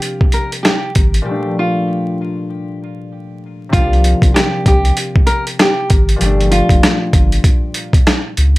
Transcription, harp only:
0, 0, Header, 1, 2, 480
1, 0, Start_track
1, 0, Tempo, 618557
1, 977, Time_signature, 4, 2, 24, 8
1, 6661, End_track
2, 0, Start_track
2, 0, Title_t, "Harp"
2, 0, Program_c, 0, 46
2, 0, Note_on_c, 0, 48, 70
2, 0, Note_on_c, 0, 53, 63
2, 0, Note_on_c, 0, 55, 64
2, 0, Note_on_c, 0, 58, 61
2, 0, Note_on_c, 0, 62, 78
2, 944, Note_on_c, 0, 46, 76
2, 953, Note_off_c, 0, 53, 0
2, 962, Note_on_c, 0, 53, 71
2, 969, Note_off_c, 0, 55, 0
2, 978, Note_on_c, 0, 55, 70
2, 996, Note_on_c, 0, 57, 68
2, 1011, Note_off_c, 0, 62, 0
2, 1014, Note_on_c, 0, 62, 88
2, 1016, Note_off_c, 0, 48, 0
2, 1043, Note_off_c, 0, 58, 0
2, 2864, Note_on_c, 0, 48, 70
2, 2873, Note_off_c, 0, 53, 0
2, 2882, Note_on_c, 0, 53, 66
2, 2889, Note_off_c, 0, 55, 0
2, 2898, Note_on_c, 0, 55, 68
2, 2916, Note_on_c, 0, 58, 61
2, 2931, Note_off_c, 0, 62, 0
2, 2934, Note_on_c, 0, 62, 77
2, 2936, Note_off_c, 0, 46, 0
2, 2962, Note_off_c, 0, 57, 0
2, 4783, Note_on_c, 0, 46, 82
2, 4790, Note_off_c, 0, 53, 0
2, 4800, Note_on_c, 0, 53, 70
2, 4809, Note_off_c, 0, 55, 0
2, 4818, Note_on_c, 0, 55, 73
2, 4835, Note_on_c, 0, 57, 70
2, 4850, Note_off_c, 0, 62, 0
2, 4853, Note_on_c, 0, 62, 89
2, 4856, Note_off_c, 0, 48, 0
2, 4881, Note_off_c, 0, 58, 0
2, 6661, Note_off_c, 0, 46, 0
2, 6661, Note_off_c, 0, 53, 0
2, 6661, Note_off_c, 0, 55, 0
2, 6661, Note_off_c, 0, 57, 0
2, 6661, Note_off_c, 0, 62, 0
2, 6661, End_track
0, 0, End_of_file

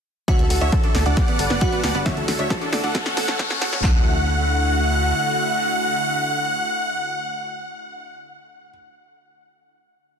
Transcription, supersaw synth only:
0, 0, Header, 1, 2, 480
1, 0, Start_track
1, 0, Key_signature, 2, "major"
1, 0, Tempo, 444444
1, 305, Time_signature, 4, 2, 24, 8
1, 11010, End_track
2, 0, Start_track
2, 0, Title_t, "Supersaw synth"
2, 0, Program_c, 0, 81
2, 303, Note_on_c, 0, 73, 73
2, 304, Note_on_c, 0, 76, 92
2, 395, Note_off_c, 0, 73, 0
2, 395, Note_off_c, 0, 76, 0
2, 421, Note_on_c, 0, 69, 65
2, 514, Note_off_c, 0, 69, 0
2, 543, Note_on_c, 0, 69, 65
2, 635, Note_off_c, 0, 69, 0
2, 664, Note_on_c, 0, 73, 81
2, 664, Note_on_c, 0, 76, 98
2, 756, Note_off_c, 0, 73, 0
2, 756, Note_off_c, 0, 76, 0
2, 781, Note_on_c, 0, 69, 66
2, 874, Note_off_c, 0, 69, 0
2, 902, Note_on_c, 0, 69, 65
2, 995, Note_off_c, 0, 69, 0
2, 1023, Note_on_c, 0, 69, 65
2, 1115, Note_off_c, 0, 69, 0
2, 1144, Note_on_c, 0, 74, 83
2, 1144, Note_on_c, 0, 78, 99
2, 2128, Note_off_c, 0, 74, 0
2, 2128, Note_off_c, 0, 78, 0
2, 2222, Note_on_c, 0, 73, 79
2, 2223, Note_on_c, 0, 76, 101
2, 2315, Note_off_c, 0, 73, 0
2, 2315, Note_off_c, 0, 76, 0
2, 2340, Note_on_c, 0, 69, 69
2, 2434, Note_off_c, 0, 69, 0
2, 2462, Note_on_c, 0, 69, 66
2, 2555, Note_off_c, 0, 69, 0
2, 2581, Note_on_c, 0, 73, 80
2, 2581, Note_on_c, 0, 76, 99
2, 2674, Note_off_c, 0, 73, 0
2, 2674, Note_off_c, 0, 76, 0
2, 2702, Note_on_c, 0, 69, 66
2, 2795, Note_off_c, 0, 69, 0
2, 2822, Note_on_c, 0, 69, 66
2, 2915, Note_off_c, 0, 69, 0
2, 2941, Note_on_c, 0, 69, 66
2, 3034, Note_off_c, 0, 69, 0
2, 3061, Note_on_c, 0, 69, 82
2, 3061, Note_on_c, 0, 78, 102
2, 4047, Note_off_c, 0, 69, 0
2, 4047, Note_off_c, 0, 78, 0
2, 4143, Note_on_c, 0, 78, 108
2, 8805, Note_off_c, 0, 78, 0
2, 11010, End_track
0, 0, End_of_file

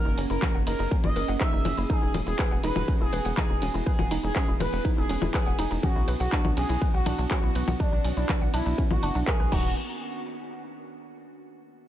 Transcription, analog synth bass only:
0, 0, Header, 1, 2, 480
1, 0, Start_track
1, 0, Tempo, 491803
1, 1852, Time_signature, 4, 2, 24, 8
1, 11595, End_track
2, 0, Start_track
2, 0, Title_t, "Analog synth bass"
2, 0, Program_c, 0, 38
2, 53, Note_on_c, 0, 30, 89
2, 128, Note_off_c, 0, 30, 0
2, 172, Note_on_c, 0, 30, 99
2, 248, Note_off_c, 0, 30, 0
2, 293, Note_on_c, 0, 30, 91
2, 368, Note_off_c, 0, 30, 0
2, 533, Note_on_c, 0, 30, 91
2, 608, Note_off_c, 0, 30, 0
2, 653, Note_on_c, 0, 30, 101
2, 728, Note_off_c, 0, 30, 0
2, 773, Note_on_c, 0, 30, 95
2, 848, Note_off_c, 0, 30, 0
2, 1013, Note_on_c, 0, 30, 88
2, 1088, Note_off_c, 0, 30, 0
2, 1132, Note_on_c, 0, 30, 100
2, 1208, Note_off_c, 0, 30, 0
2, 1253, Note_on_c, 0, 30, 93
2, 1328, Note_off_c, 0, 30, 0
2, 1492, Note_on_c, 0, 30, 89
2, 1568, Note_off_c, 0, 30, 0
2, 1612, Note_on_c, 0, 30, 103
2, 1688, Note_off_c, 0, 30, 0
2, 1732, Note_on_c, 0, 30, 96
2, 1808, Note_off_c, 0, 30, 0
2, 1972, Note_on_c, 0, 28, 85
2, 2048, Note_off_c, 0, 28, 0
2, 2092, Note_on_c, 0, 28, 101
2, 2168, Note_off_c, 0, 28, 0
2, 2213, Note_on_c, 0, 28, 94
2, 2288, Note_off_c, 0, 28, 0
2, 2452, Note_on_c, 0, 28, 89
2, 2528, Note_off_c, 0, 28, 0
2, 2573, Note_on_c, 0, 28, 102
2, 2648, Note_off_c, 0, 28, 0
2, 2693, Note_on_c, 0, 28, 94
2, 2768, Note_off_c, 0, 28, 0
2, 2933, Note_on_c, 0, 28, 89
2, 3008, Note_off_c, 0, 28, 0
2, 3052, Note_on_c, 0, 28, 101
2, 3128, Note_off_c, 0, 28, 0
2, 3172, Note_on_c, 0, 28, 91
2, 3248, Note_off_c, 0, 28, 0
2, 3413, Note_on_c, 0, 28, 88
2, 3488, Note_off_c, 0, 28, 0
2, 3532, Note_on_c, 0, 28, 104
2, 3608, Note_off_c, 0, 28, 0
2, 3652, Note_on_c, 0, 28, 96
2, 3728, Note_off_c, 0, 28, 0
2, 3893, Note_on_c, 0, 28, 88
2, 3968, Note_off_c, 0, 28, 0
2, 4012, Note_on_c, 0, 28, 99
2, 4088, Note_off_c, 0, 28, 0
2, 4132, Note_on_c, 0, 28, 92
2, 4208, Note_off_c, 0, 28, 0
2, 4372, Note_on_c, 0, 28, 88
2, 4448, Note_off_c, 0, 28, 0
2, 4492, Note_on_c, 0, 28, 102
2, 4568, Note_off_c, 0, 28, 0
2, 4612, Note_on_c, 0, 28, 96
2, 4688, Note_off_c, 0, 28, 0
2, 4852, Note_on_c, 0, 28, 86
2, 4928, Note_off_c, 0, 28, 0
2, 4972, Note_on_c, 0, 28, 102
2, 5048, Note_off_c, 0, 28, 0
2, 5092, Note_on_c, 0, 28, 95
2, 5168, Note_off_c, 0, 28, 0
2, 5332, Note_on_c, 0, 28, 86
2, 5408, Note_off_c, 0, 28, 0
2, 5452, Note_on_c, 0, 28, 101
2, 5528, Note_off_c, 0, 28, 0
2, 5572, Note_on_c, 0, 28, 92
2, 5648, Note_off_c, 0, 28, 0
2, 5812, Note_on_c, 0, 35, 87
2, 5888, Note_off_c, 0, 35, 0
2, 5932, Note_on_c, 0, 35, 100
2, 6008, Note_off_c, 0, 35, 0
2, 6052, Note_on_c, 0, 35, 93
2, 6128, Note_off_c, 0, 35, 0
2, 6293, Note_on_c, 0, 35, 88
2, 6368, Note_off_c, 0, 35, 0
2, 6412, Note_on_c, 0, 35, 101
2, 6488, Note_off_c, 0, 35, 0
2, 6533, Note_on_c, 0, 35, 96
2, 6608, Note_off_c, 0, 35, 0
2, 6772, Note_on_c, 0, 35, 86
2, 6848, Note_off_c, 0, 35, 0
2, 6891, Note_on_c, 0, 35, 104
2, 6968, Note_off_c, 0, 35, 0
2, 7012, Note_on_c, 0, 35, 95
2, 7088, Note_off_c, 0, 35, 0
2, 7252, Note_on_c, 0, 35, 91
2, 7328, Note_off_c, 0, 35, 0
2, 7372, Note_on_c, 0, 35, 104
2, 7448, Note_off_c, 0, 35, 0
2, 7493, Note_on_c, 0, 35, 96
2, 7568, Note_off_c, 0, 35, 0
2, 7733, Note_on_c, 0, 35, 86
2, 7808, Note_off_c, 0, 35, 0
2, 7852, Note_on_c, 0, 35, 100
2, 7928, Note_off_c, 0, 35, 0
2, 7972, Note_on_c, 0, 35, 92
2, 8048, Note_off_c, 0, 35, 0
2, 8212, Note_on_c, 0, 35, 88
2, 8288, Note_off_c, 0, 35, 0
2, 8332, Note_on_c, 0, 35, 99
2, 8408, Note_off_c, 0, 35, 0
2, 8452, Note_on_c, 0, 35, 94
2, 8528, Note_off_c, 0, 35, 0
2, 8692, Note_on_c, 0, 35, 86
2, 8768, Note_off_c, 0, 35, 0
2, 8812, Note_on_c, 0, 30, 103
2, 8888, Note_off_c, 0, 30, 0
2, 8933, Note_on_c, 0, 35, 93
2, 9008, Note_off_c, 0, 35, 0
2, 9172, Note_on_c, 0, 35, 89
2, 9248, Note_off_c, 0, 35, 0
2, 9292, Note_on_c, 0, 27, 100
2, 9515, Note_off_c, 0, 27, 0
2, 11595, End_track
0, 0, End_of_file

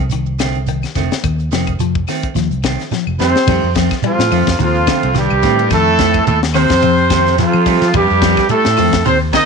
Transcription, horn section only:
0, 0, Header, 1, 2, 480
1, 0, Start_track
1, 0, Tempo, 559180
1, 1058, Time_signature, 4, 2, 24, 8
1, 8115, End_track
2, 0, Start_track
2, 0, Title_t, "Horn section"
2, 0, Program_c, 0, 61
2, 2752, Note_on_c, 0, 60, 93
2, 2752, Note_on_c, 0, 72, 101
2, 3195, Note_off_c, 0, 60, 0
2, 3195, Note_off_c, 0, 72, 0
2, 3483, Note_on_c, 0, 53, 81
2, 3483, Note_on_c, 0, 65, 88
2, 3921, Note_off_c, 0, 53, 0
2, 3921, Note_off_c, 0, 65, 0
2, 3971, Note_on_c, 0, 53, 87
2, 3971, Note_on_c, 0, 65, 95
2, 4405, Note_off_c, 0, 53, 0
2, 4405, Note_off_c, 0, 65, 0
2, 4439, Note_on_c, 0, 55, 86
2, 4439, Note_on_c, 0, 67, 93
2, 4911, Note_off_c, 0, 55, 0
2, 4911, Note_off_c, 0, 67, 0
2, 4919, Note_on_c, 0, 57, 106
2, 4919, Note_on_c, 0, 69, 115
2, 5357, Note_off_c, 0, 57, 0
2, 5357, Note_off_c, 0, 69, 0
2, 5371, Note_on_c, 0, 57, 87
2, 5371, Note_on_c, 0, 69, 94
2, 5481, Note_off_c, 0, 57, 0
2, 5481, Note_off_c, 0, 69, 0
2, 5620, Note_on_c, 0, 60, 98
2, 5620, Note_on_c, 0, 72, 107
2, 6305, Note_off_c, 0, 60, 0
2, 6305, Note_off_c, 0, 72, 0
2, 6341, Note_on_c, 0, 53, 88
2, 6341, Note_on_c, 0, 65, 95
2, 6786, Note_off_c, 0, 53, 0
2, 6786, Note_off_c, 0, 65, 0
2, 6834, Note_on_c, 0, 55, 109
2, 6834, Note_on_c, 0, 67, 119
2, 7299, Note_on_c, 0, 57, 97
2, 7299, Note_on_c, 0, 69, 105
2, 7305, Note_off_c, 0, 55, 0
2, 7305, Note_off_c, 0, 67, 0
2, 7743, Note_off_c, 0, 57, 0
2, 7743, Note_off_c, 0, 69, 0
2, 7777, Note_on_c, 0, 60, 99
2, 7777, Note_on_c, 0, 72, 108
2, 7885, Note_off_c, 0, 60, 0
2, 7885, Note_off_c, 0, 72, 0
2, 8021, Note_on_c, 0, 63, 104
2, 8021, Note_on_c, 0, 75, 113
2, 8115, Note_off_c, 0, 63, 0
2, 8115, Note_off_c, 0, 75, 0
2, 8115, End_track
0, 0, End_of_file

